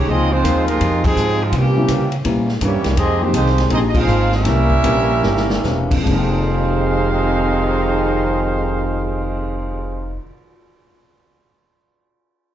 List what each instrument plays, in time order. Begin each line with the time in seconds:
0.08 upright bass C#2, steel-string acoustic guitar C#3 F3 C4 D#4, grand piano F3 A#3 D#4 G#4, trombone section G#3 C4 D#4, trumpet section C4 F4 G#4 D#5, kick
0.32 trombone section F3 G#3 C4, trumpet section G#3 D#4 F4 C5
0.44 upright bass D#2, steel-string acoustic guitar C#3 F3 C4 D#4, grand piano F3 A#3 D#4 A#4, kick, hi-hat pedal, ride
0.67 trombone section C3 F3 A#3, trumpet section G#3 D#4 F4 A#4, ride
0.80 upright bass F2, steel-string acoustic guitar C#3 F3 C4 D#4, kick, ride
1.04 trombone section C3 F3 G#3, trumpet section C4 D#4 G#4, kick, crash
1.16 upright bass G#2, steel-string acoustic guitar C#3 F3 C4 D#4, hi-hat pedal
1.43 trombone section G#2 C3 F3, trumpet section G#3 C4 D#4 F4
1.52 trombone section A#2 E3, upright bass C3, steel-string acoustic guitar C3 E3 A#3 C#4, kick, ride
1.56 trombone section G3, trumpet section A#3 C#4 G4
1.77 grand piano G3 A#3 C#4 E4
1.88 steel-string acoustic guitar C3 E3 A#3 C#4, upright bass C#3, kick, hi-hat pedal, ride
2.12 ride
2.24 upright bass A#2, steel-string acoustic guitar C3 E3 A#3 C#4, grand piano G3 A#3 C#4 E4, kick, ride
2.49 snare
2.61 upright bass G2, steel-string acoustic guitar C3 E3 A#3 C#4, trombone section G3 A#3 C#4, trumpet section A#3 E4 G4 C#5, kick, hi-hat pedal, ride
2.73 upright bass E2
2.84 upright bass C2, snare, ride
2.97 upright bass F2, steel-string acoustic guitar F3 A#3 D#4 G#4, trombone section G#3 C4 D#4, trumpet section C4 G4 G#4 D#5, kick, ride
3.21 trombone section D#3 G#3 C4, grand piano F3 A#3 D#4 G4, trumpet section G#3 D#4 G4 C5
3.33 upright bass C2, trombone section D#3 G#3 C4, steel-string acoustic guitar F3 A#3 D#4 G#4, trumpet section G#3 D#4 G4 C5, kick, hi-hat pedal, ride
3.46 snare
3.58 snare, ride
3.70 upright bass A#1, grand piano F3 A#3 D#4 G4, steel-string acoustic guitar F3 A#3 D#4 G#4, trombone section G#3 C4 D#4, trumpet section C4 G#4, kick, ride
3.74 trumpet section G4 D#5
3.88 trumpet section D#5
3.94 trombone section G#3 C4 F4, kick, crash
4.00 trumpet section D#4 G#4 C5 F5
4.07 upright bass G#1, steel-string acoustic guitar F3 A#3 D#4 G#4, hi-hat pedal
4.32 trombone section G3 A#3 E4, trumpet section G4 E5, snare
4.36 trumpet section C#4 A#4
4.45 upright bass C2, steel-string acoustic guitar C3 E3 A#3 C#4, grand piano A#3 C#4 E4 G4, kick, snare, ride
4.70 kick
4.83 upright bass A#1, steel-string acoustic guitar C3 E3 A#3 C#4, grand piano A#3 C#4 E4 G4, kick, hi-hat pedal, ride
5.23 upright bass G1, steel-string acoustic guitar C3 E3 A#3 C#4, snare
5.37 snare
5.50 snare
5.64 upright bass E1, steel-string acoustic guitar C3 E3 A#3 C#4, snare, hi-hat pedal
5.91 grand piano F2, kick, crash
5.98 grand piano F3
6.03 upright bass F1, trombone section F2 C3 G#3, steel-string acoustic guitar F3 A#3, grand piano G#3, kick, crash
6.07 trombone section D#3, grand piano A#3, trumpet section D#4 G#4 C5 F5, steel-string acoustic guitar D#4
6.13 grand piano D#4
6.18 grand piano G5
6.34 cymbal swell